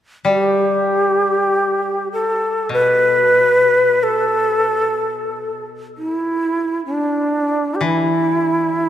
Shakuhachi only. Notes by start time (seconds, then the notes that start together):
0.29 G4
2.13 A4
2.74 B4
4.03 A4
5.98 E4
6.86 D4
7.75 G4
7.84 E4